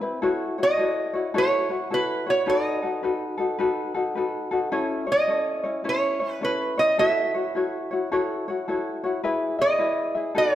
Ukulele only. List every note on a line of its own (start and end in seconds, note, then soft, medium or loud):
0.01 0.23 C4 soft
0.01 0.21 E4 soft
0.01 0.21 B4 medium
0.22 0.58 E4 medium
0.22 0.58 F#4 medium
0.22 0.58 A4 medium
0.22 0.57 C#5 medium
0.58 0.77 E4 soft
0.58 0.78 F#4 soft
0.58 0.78 C#5 soft
0.77 1.14 E4 medium
0.77 1.13 F#4 medium
0.77 1.14 A4 medium
0.77 1.12 C#5 medium
1.13 1.33 E4 soft
1.13 1.33 F#4 soft
1.13 1.34 C#5 soft
1.34 1.70 E4 medium
1.34 1.69 F#4 medium
1.34 1.70 A4 medium
1.34 1.68 C#5 medium
1.69 1.90 E4 soft
1.69 1.91 F#4 soft
1.69 1.90 C#5 medium
1.91 2.27 E4 soft
1.91 2.26 F#4 soft
1.91 2.26 A4 medium
1.91 2.25 C#5 medium
2.26 2.47 E4 soft
2.26 2.46 F#4 soft
2.26 2.46 C#5 soft
2.46 2.83 D#4 medium
2.46 2.82 F#4 medium
2.46 2.81 A4 medium
2.46 2.82 B4 medium
2.82 3.02 D#4 soft
2.82 3.03 F#4 soft
2.82 3.03 A4 soft
3.03 3.38 D#4 medium
3.03 3.38 F#4 medium
3.03 3.36 A4 medium
3.03 3.39 B4 medium
3.38 3.58 D#4 soft
3.38 3.58 F#4 soft
3.38 3.59 A4 medium
3.58 3.95 D#4 medium
3.58 3.94 F#4 medium
3.58 3.93 A4 medium
3.58 3.95 B4 medium
3.94 4.15 D#4 soft
3.94 4.16 F#4 soft
3.94 4.16 A4 medium
4.15 4.52 D#4 medium
4.15 4.51 F#4 medium
4.15 4.50 A4 medium
4.15 4.52 B4 medium
4.51 4.71 D#4 soft
4.51 4.71 F#4 medium
4.51 4.70 A4 soft
4.72 5.08 C#4 medium
4.72 5.07 E4 medium
4.72 5.06 A4 medium
4.72 5.05 C#5 medium
5.07 5.28 C#4 soft
5.07 5.28 E4 soft
5.07 5.28 C#5 soft
5.28 5.64 C#4 medium
5.28 5.63 E4 medium
5.28 5.64 A4 medium
5.28 5.62 C#5 medium
5.63 5.84 C#4 soft
5.63 5.83 E4 soft
5.63 5.84 C#5 soft
5.84 6.21 C#4 medium
5.84 6.20 E4 medium
5.84 6.21 A4 medium
5.84 6.19 C#5 medium
6.20 6.40 C#4 soft
6.20 6.41 E4 soft
6.20 6.41 C#5 soft
6.41 6.78 C#4 medium
6.41 6.77 E4 medium
6.41 6.77 A4 soft
6.41 6.76 C#5 medium
6.77 6.99 C#4 soft
6.77 6.98 E4 soft
6.77 6.98 C#5 soft
6.98 7.34 E4 medium
6.98 7.34 F#4 medium
6.98 7.34 A4 medium
6.98 7.33 C#5 medium
7.34 7.54 E4 soft
7.34 7.55 F#4 soft
7.34 7.55 C#5 soft
7.55 7.91 E4 medium
7.55 7.91 F#4 medium
7.55 7.90 A4 medium
7.55 7.89 C#5 medium
7.91 8.11 E4 soft
7.91 8.11 F#4 soft
7.91 8.11 C#5 soft
8.12 8.47 E4 medium
8.12 8.47 F#4 medium
8.12 8.47 A4 medium
8.12 8.47 C#5 medium
8.48 8.67 E4 soft
8.48 8.68 F#4 soft
8.48 8.68 C#5 medium
8.68 9.04 E4 medium
8.68 9.03 F#4 medium
8.68 9.03 A4 medium
8.68 9.02 C#5 medium
9.03 9.23 E4 soft
9.03 9.24 F#4 medium
9.03 9.23 C#5 medium
9.24 9.60 E4 medium
9.24 9.59 G#4 medium
9.24 9.59 B4 medium
9.24 9.57 E5 medium
9.59 9.78 E4 soft
9.59 9.79 G#4 soft
9.59 9.80 E5 soft
9.79 10.15 E4 medium
9.79 10.15 G#4 medium
9.79 10.15 B4 medium
9.79 10.14 E5 medium
10.15 10.36 E4 soft
10.15 10.35 G#4 soft
10.15 10.34 E5 soft
10.35 10.55 D#4 medium
10.35 10.55 F#4 medium
10.35 10.55 A4 medium
10.35 10.55 B4 medium